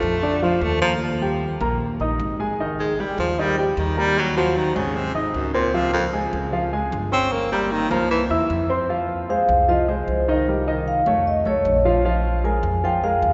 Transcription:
Already playing: F3 A3 F4 F5
0.02 F2
0.23 D3 D4 D5
0.42 F3 F4 F5
0.61 D#2 A3
0.82 F3 A#3 A#4 A#5
1.21 G3 G4 G5
1.61 A#1 A#3 A#4 A#5
2.00 A#1 D#4 D#5 D#6
2.20 G#1
2.39 G#3 G#4 G#5
2.60 D#3 D#4 D#5
2.79 G#3
3.00 G3 G4 G5
3.18 D#2 F3
3.39 D#3 G3 D#4 D#5
3.58 A#2 G3 G4 G5
3.77 D#2 D#3
3.97 G3 A#3 A#4 A#5
4.19 F#3
4.36 F3 F#3 F#4 F#5
4.57 D#3
4.75 G#1 C#3 G#3 G#4 G#5
4.96 C3
5.15 D#2 D#4 D#5 D#6
5.34 C#2 F#2
5.54 A#2 C4 C5 C6
5.74 C3 F3 F4 F5
5.93 F2
6.13 G#3 G#4 G#5
6.33 C#2
6.52 F3 F4 F5
6.73 G#3 G#4 G#5
6.92 G1
7.12 C4 C#4 C#5 C#6
7.32 A#3
7.52 G3 A#3 A#4 A#5
7.72 D#3
7.90 C2 F3 A#3 A#4 A#5
8.11 E3
8.30 E2 E4 E5 E6
8.50 F2
8.70 C4 C5 C6
8.89 F3 F4 F5
9.29 G#3 G#4 C5 F5
9.49 C2
9.68 F3 F4 D#5 F5
9.88 G#3 G#4 C5
10.08 C2
10.28 D#3 D#4 D#5
10.48 G3 G4 A#4
10.68 D#3 D#4 D#5
10.88 F5
11.06 F2 A3 A4 C#5
11.27 D#5
11.45 B1 A3 A4 C#5
11.65 A#1
11.85 F3 F4 F5
12.05 F3 F4 F5
12.44 G#3 G#4 A#4 G#5
12.63 F2
12.84 F3 F4 F5 G5
13.03 G#3 G#4 A#4 F5
13.22 D#2

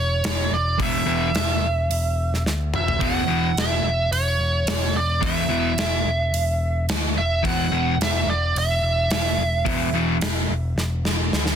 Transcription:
Already playing: E1 C#5
0.24 E1, snare, open hi-hat
0.51 E1 D5
0.79 E1 E2 B2 E3 E5, kick, open hi-hat
1.06 E1 E2 B2 E3
1.34 E1, snare, open hi-hat
1.62 E1
1.90 E1, open hi-hat
2.34 snare
2.45 D2, snare
2.74 E1 E5, mid tom
2.88 floor tom
3.01 E1 E2 B2 E3 F#5, kick, open hi-hat
3.27 E1 E2 B2 E3
3.55 E1 E5, snare, open hi-hat
3.83 E1
4.11 E1 C#5, open hi-hat
4.39 E1
4.66 E1, snare, open hi-hat
4.93 E1 D5
5.21 E1 E2 B2 E3 E5, kick, open hi-hat
5.48 E1 E2 B2 E3
5.77 E1, snare, open hi-hat
6.05 E1
6.32 E1, open hi-hat
6.89 D2, snare, open hi-hat
7.17 E1 E5
7.43 E1 E2 B2 E3 F#5, kick, open hi-hat
7.72 E1 E2 B2 E3
7.99 E1, snare, open hi-hat
8.03 E5
8.26 E1 D5
8.55 E1 E5, open hi-hat
8.82 E1
9.10 E1, snare, open hi-hat
9.39 E1
9.65 E1 E2 B2 E3, kick, open hi-hat
9.94 E1 E2 B2 E3
10.21 E1, snare, open hi-hat
10.49 E1
10.76 E1, snare
11.05 snare
11.32 D2, snare
11.46 snare

